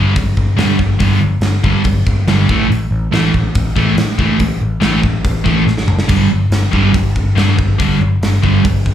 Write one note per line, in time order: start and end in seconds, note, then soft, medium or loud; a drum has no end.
0.00 0.11 G1 medium
0.00 0.12 G2 medium
0.00 0.13 D3 medium
0.00 0.13 G3 medium
0.16 0.32 G1 medium
0.16 kick loud
0.16 open hi-hat soft
0.37 0.53 G1 medium
0.37 kick medium
0.57 0.75 G2 medium
0.57 0.74 G2 medium
0.57 0.75 D3 medium
0.57 0.76 G3 medium
0.57 snare medium
0.57 open hi-hat medium
0.79 0.95 G1 medium
0.79 kick medium
0.99 1.16 G1 medium
0.99 1.17 G2 medium
0.99 1.18 D3 medium
0.99 1.18 G3 medium
0.99 kick loud
0.99 open hi-hat soft
1.21 1.37 G1 medium
1.41 1.57 G1 medium
1.41 snare medium
1.41 open hi-hat soft
1.64 1.80 G1 medium
1.64 1.81 G2 medium
1.64 1.81 D3 medium
1.64 1.82 G3 loud
1.64 kick medium
1.84 2.01 G1 medium
1.84 kick loud
1.84 open hi-hat soft
2.07 2.22 G1 medium
2.07 kick medium
2.28 2.43 G1 medium
2.28 2.45 G2 medium
2.28 2.45 D3 medium
2.28 2.46 G3 medium
2.28 snare loud
2.28 open hi-hat soft
2.49 2.64 A1 medium
2.49 2.67 A2 medium
2.49 2.67 E3 medium
2.49 2.67 A3 medium
2.49 kick medium
2.70 2.86 A1 medium
2.70 open hi-hat soft
2.91 3.07 A1 medium
3.12 3.28 A1 medium
3.12 3.30 A2 medium
3.12 3.30 E3 medium
3.12 3.31 A3 loud
3.12 snare medium
3.12 open hi-hat soft
3.34 3.50 A1 medium
3.34 kick medium
3.55 3.70 A1 medium
3.55 kick loud
3.55 open hi-hat soft
3.76 3.92 A1 medium
3.76 3.93 A2 medium
3.76 3.93 E3 medium
3.76 3.93 A3 medium
3.76 kick medium
3.97 4.13 A2 medium
3.97 snare loud
3.97 open hi-hat medium
4.19 4.34 A1 medium
4.19 4.36 A2 medium
4.19 4.36 E3 loud
4.19 4.36 A3 loud
4.19 kick medium
4.40 4.55 A1 medium
4.40 kick loud
4.40 open hi-hat soft
4.62 4.77 A1 medium
4.81 4.97 A1 medium
4.81 4.99 A2 medium
4.81 4.99 E3 medium
4.81 4.99 A3 medium
4.81 snare medium
4.81 open hi-hat soft
5.03 5.19 A1 medium
5.03 kick medium
5.24 5.40 A1 medium
5.24 kick loud
5.24 open hi-hat soft
5.44 5.61 A1 medium
5.44 5.62 A2 medium
5.44 5.62 E3 medium
5.44 5.63 A3 medium
5.44 kick medium
5.67 5.82 A1 medium
5.67 snare soft
5.78 snare medium
5.86 6.02 F#1 medium
5.86 mid tom medium
5.99 snare medium
6.08 6.25 G1 medium
6.08 6.26 G2 medium
6.08 6.27 D3 medium
6.08 6.27 G3 loud
6.08 kick loud
6.08 open hi-hat soft
6.08 splash medium
6.30 6.46 G1 medium
6.50 6.66 G1 loud
6.50 snare medium
6.50 open hi-hat soft
6.72 6.88 G1 medium
6.72 6.90 G2 medium
6.72 6.90 D3 medium
6.72 6.90 G3 loud
6.72 kick medium
6.94 7.10 G1 medium
6.94 kick loud
6.94 open hi-hat medium
7.16 7.31 G1 medium
7.16 kick medium
7.36 7.53 G2 medium
7.36 7.52 G2 medium
7.36 7.54 D3 medium
7.36 7.54 G3 medium
7.36 snare medium
7.36 open hi-hat soft
7.58 7.74 G1 medium
7.58 kick medium
7.79 7.95 G1 medium
7.79 7.96 G2 medium
7.79 7.96 D3 loud
7.79 7.96 G3 loud
7.79 kick loud
7.79 open hi-hat soft
8.01 8.16 G1 medium
8.22 8.37 G1 medium
8.22 snare medium
8.22 open hi-hat soft
8.43 8.59 G1 medium
8.43 8.60 G2 medium
8.43 8.60 D3 medium
8.43 8.60 G3 medium
8.43 kick medium
8.64 8.80 G1 medium
8.64 kick loud
8.64 open hi-hat medium
8.86 8.94 G1 medium
8.86 kick medium